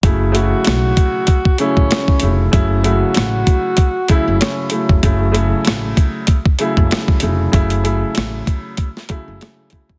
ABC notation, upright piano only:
X:1
M:4/4
L:1/8
Q:"Swing 16ths" 1/4=96
K:F#m
V:1 name="Upright piano" clef=bass
[C,F,A,E] [C,F,A,E]3 z [C,F,A,E]2 [C,F,A,E] | [C,F,A,E] [C,F,A,E]3 z [C,F,A,E] [C,A,] [C,F,A,E] | [C,F,A,E] [C,F,A,E]3 z [C,F,A,E]2 [C,F,A,E] | [C,F,A,E] [C,F,A,E]3 z [C,F,A,E] [C,F,A,E] [C,F,A,E] |]